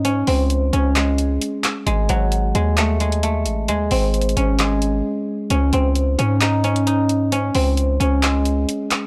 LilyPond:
<<
  \new Staff \with { instrumentName = "Guzheng" } { \time 4/4 \key gis \phrygian \tempo 4 = 132 cis'8 bis4 cis'8 gis2 | gis8 fis4 gis8 a8 gis8 a4 | gis8 bis4 cis'8 gis2 | cis'8 bis4 cis'8 dis'8 cis'8 dis'4 |
cis'8 bis4 cis'8 gis2 | }
  \new Staff \with { instrumentName = "808-style bass" } { \clef bass \time 4/4 \key gis \phrygian gis,8 cis,4 cis,4. r4 | gis,,8 gis,,4 dis,2 a,,8 | dis,8 gis,,4 gis,,4. r4 | cis,8 cis,4 gis,2~ gis,8~ |
gis,8 cis,4 cis,4. r4 | }
  \new DrumStaff \with { instrumentName = "Drums" } \drummode { \time 4/4 hh8 hho8 hh8 hh8 <hc hh>8 hh8 hh8 <hc hh>8 | hh8 hh8 hh8 hh8 <hc hh>8 hh16 hh16 hh8 hh8 | hh8 hho8 \tuplet 3/2 { hh16 hh16 hh16 hh16 r16 r16 } <hc hh>8 hh8 r4 | hh8 hh8 hh8 hh8 <hc hh>8 hh16 hh16 hh8 hh8 |
hh8 hho8 hh8 hh8 <hc hh>8 hh8 hh8 <hc hh>8 | }
>>